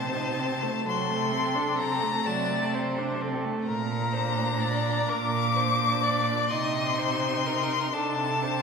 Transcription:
Already playing: cello C3, viola C4, violin C5 A5
0.16 viola D#4
0.40 viola C4
0.63 viola A3
0.86 cello C3, viola F#3, violin A4 C6
1.10 viola A3
1.32 viola C4
1.55 viola D4
1.78 viola C4, violin A#5
2.03 viola A3
2.26 cello C3, viola F#3, violin D5 A5
2.50 viola A3
2.75 viola C4, violin C5
2.98 viola D4
3.21 viola C4, violin A4
3.44 viola A3
3.67 cello A#2, violin A#4 A#5
4.13 viola D4, violin C5
4.60 violin D5
5.09 cello A#2, violin A#4 D6
5.56 viola D4, violin C5
6.03 violin D5
6.50 cello C3, viola D#4, violin D#5 C6
6.98 viola D#4, violin C5
7.47 violin A#4
7.93 cello C3, viola D4, violin A4 A5
8.43 viola D4, violin C5

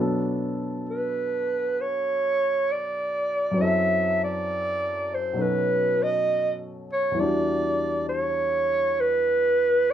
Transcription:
Already playing: grand piano B2 F#3 B3
0.00 grand piano D4 A4
0.90 clarinet B4
1.81 clarinet C#5
2.72 clarinet D5
3.51 grand piano F#2 F#3
3.57 grand piano C4 E4
3.62 grand piano A4, clarinet E5
4.24 clarinet D5
5.14 clarinet C5
5.33 grand piano B2 F#3 C#4 D#4
5.39 grand piano A4, clarinet B4
6.03 clarinet D#5
6.93 clarinet C#5
7.11 grand piano E2 E3
7.17 grand piano G3 D4, clarinet D5
7.23 grand piano F#4
8.09 clarinet C#5
9.00 clarinet B4

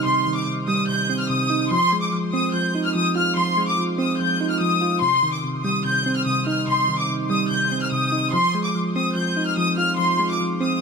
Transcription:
Already playing: synth keys C3 D#3 G3 C4 D#4
0.06 synth keys C3, violin section C6
0.26 synth keys D#3
0.37 violin section D6
0.47 synth keys C3
0.68 synth keys G3, violin section D#6
0.88 synth keys C3, violin section G6
1.10 synth keys C4
1.20 violin section F6
1.30 synth keys C3, violin section D#6
1.50 synth keys D#4
1.71 synth keys F3, violin section C6
1.92 synth keys G#3
2.02 violin section D6
2.13 synth keys F3
2.33 synth keys C4, violin section D#6
2.54 synth keys F3, violin section G6
2.75 synth keys D#4
2.85 violin section F6
2.95 synth keys F3, violin section D#6
3.16 synth keys F4, violin section F6
3.36 synth keys F3, violin section C6
3.57 synth keys G#3
3.68 violin section D6
3.78 synth keys F3
3.98 synth keys C4, violin section D#6
4.19 synth keys F3, violin section G6
4.41 synth keys D#4
4.50 violin section F6
4.61 synth keys F3, violin section D#6
4.81 synth keys F4
5.02 synth keys C3, violin section C6
5.23 synth keys D#3
5.33 violin section D6
5.44 synth keys C3
5.64 synth keys G3, violin section D#6
5.85 synth keys C3, violin section G6
6.06 synth keys C4
6.16 violin section F6
6.26 synth keys C3, violin section D#6
6.47 synth keys D#4, violin section F6
6.68 synth keys C3, violin section C6
6.88 synth keys D#3
6.99 violin section D6
7.09 synth keys C3
7.30 synth keys G3, violin section D#6
7.51 synth keys C3, violin section G6
7.72 synth keys C4
7.82 violin section F6
7.92 synth keys C3, violin section D#6
8.12 synth keys D#4
8.33 synth keys F3, violin section C6
8.55 synth keys G#3
8.64 violin section D6
8.75 synth keys F3
8.96 synth keys C4, violin section D#6
9.16 synth keys F3, violin section G6
9.37 synth keys D#4
9.47 violin section F6
9.57 synth keys F3, violin section D#6
9.78 synth keys F4, violin section F6
9.99 synth keys F3, violin section C6
10.19 synth keys G#3
10.30 violin section D6
10.40 synth keys F3
10.61 synth keys C4, violin section D#6

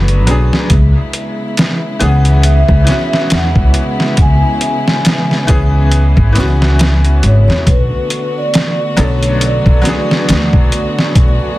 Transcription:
Already playing: upright bass F#1, string section D3 A3 B3 F#4, upright piano F#3 B3 D4 A4 B4, vibraphone B4
0.08 closed hi-hat
0.27 upright bass B1, upright piano F#3 B3 D4, closed hi-hat
0.31 upright piano G#4
0.53 snare
0.70 upright bass C#2, string section C#3 G#3 B3 E4, kick, closed hi-hat
1.13 closed hi-hat
1.57 snare, closed hi-hat
1.99 upright bass C#2, upright piano E3 B3 C#4 G#4, vibraphone F#5, closed hi-hat
2.25 closed hi-hat
2.43 vibraphone E5, closed hi-hat
2.68 upright bass C#2, kick
2.84 upright piano E3 B3, snare, closed hi-hat
2.89 upright piano C#4 F#4
3.13 snare
3.30 upright bass E2, snare, closed hi-hat
3.35 vibraphone F#5
3.55 upright bass C#2, kick
3.74 closed hi-hat
4.00 snare
4.17 upright bass C#2, kick, closed hi-hat
4.22 vibraphone G#5
4.61 closed hi-hat
4.88 snare
5.05 snare, closed hi-hat
5.31 snare
5.47 upright bass C#2, upright piano E3 B3 C#4 G#4, kick, closed hi-hat
5.92 closed hi-hat
6.17 upright bass G#1, kick
6.32 upright bass C#2, upright piano E3 B3, closed hi-hat
6.37 upright piano C#4 F#4, snare
6.62 snare
6.79 snare, closed hi-hat
7.05 closed hi-hat
7.23 upright bass G#1, vibraphone C#5, closed hi-hat
7.48 upright bass E2, snare
7.66 upright bass B1, string section D3 A3 B3 F#4, vibraphone B4, kick, closed hi-hat
8.10 closed hi-hat
8.38 vibraphone D5
8.54 snare, closed hi-hat
8.97 upright bass B1, upright piano F#3 B3 D4 A4, closed hi-hat
9.23 closed hi-hat
9.41 closed hi-hat
9.46 vibraphone D5
9.66 upright bass B1, kick
9.82 upright piano F#3 B3, closed hi-hat
9.86 upright piano D4 G#4, snare
10.11 snare
10.29 upright bass D2, snare, closed hi-hat
10.53 upright bass B1, kick
10.72 closed hi-hat
10.99 snare
11.15 upright bass B1, kick, closed hi-hat

